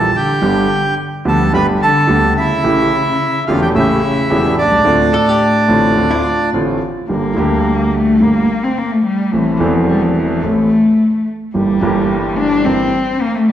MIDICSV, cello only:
0, 0, Header, 1, 2, 480
1, 0, Start_track
1, 0, Tempo, 556586
1, 361, Time_signature, 4, 2, 24, 8
1, 11660, End_track
2, 0, Start_track
2, 0, Title_t, "Cello"
2, 0, Program_c, 0, 42
2, 0, Note_on_c, 0, 52, 68
2, 97, Note_off_c, 0, 52, 0
2, 145, Note_on_c, 0, 50, 60
2, 818, Note_off_c, 0, 50, 0
2, 1077, Note_on_c, 0, 53, 61
2, 1301, Note_off_c, 0, 53, 0
2, 1313, Note_on_c, 0, 55, 78
2, 1422, Note_off_c, 0, 55, 0
2, 1557, Note_on_c, 0, 50, 70
2, 2002, Note_off_c, 0, 50, 0
2, 2032, Note_on_c, 0, 49, 65
2, 2957, Note_off_c, 0, 49, 0
2, 2984, Note_on_c, 0, 50, 64
2, 3092, Note_off_c, 0, 50, 0
2, 3097, Note_on_c, 0, 52, 69
2, 3154, Note_off_c, 0, 52, 0
2, 3210, Note_on_c, 0, 49, 69
2, 3905, Note_off_c, 0, 49, 0
2, 3941, Note_on_c, 0, 45, 60
2, 5593, Note_off_c, 0, 45, 0
2, 6120, Note_on_c, 0, 58, 77
2, 6842, Note_on_c, 0, 57, 83
2, 6855, Note_off_c, 0, 58, 0
2, 7096, Note_on_c, 0, 58, 86
2, 7109, Note_off_c, 0, 57, 0
2, 7446, Note_on_c, 0, 60, 79
2, 7459, Note_off_c, 0, 58, 0
2, 7572, Note_on_c, 0, 58, 86
2, 7585, Note_off_c, 0, 60, 0
2, 7691, Note_on_c, 0, 57, 77
2, 7703, Note_off_c, 0, 58, 0
2, 7799, Note_off_c, 0, 57, 0
2, 7804, Note_on_c, 0, 55, 79
2, 8045, Note_on_c, 0, 52, 73
2, 8058, Note_off_c, 0, 55, 0
2, 8393, Note_on_c, 0, 53, 71
2, 8406, Note_off_c, 0, 52, 0
2, 8530, Note_on_c, 0, 55, 83
2, 8543, Note_off_c, 0, 53, 0
2, 8644, Note_on_c, 0, 53, 69
2, 8657, Note_off_c, 0, 55, 0
2, 8760, Note_off_c, 0, 53, 0
2, 8766, Note_on_c, 0, 52, 72
2, 9009, Note_on_c, 0, 57, 74
2, 9022, Note_off_c, 0, 52, 0
2, 9725, Note_off_c, 0, 57, 0
2, 9964, Note_on_c, 0, 55, 80
2, 10668, Note_on_c, 0, 62, 93
2, 10681, Note_off_c, 0, 55, 0
2, 10907, Note_on_c, 0, 60, 90
2, 10920, Note_off_c, 0, 62, 0
2, 11395, Note_on_c, 0, 58, 88
2, 11408, Note_off_c, 0, 60, 0
2, 11511, Note_on_c, 0, 57, 77
2, 11524, Note_off_c, 0, 58, 0
2, 11626, Note_on_c, 0, 55, 75
2, 11639, Note_off_c, 0, 57, 0
2, 11660, Note_off_c, 0, 55, 0
2, 11660, End_track
0, 0, End_of_file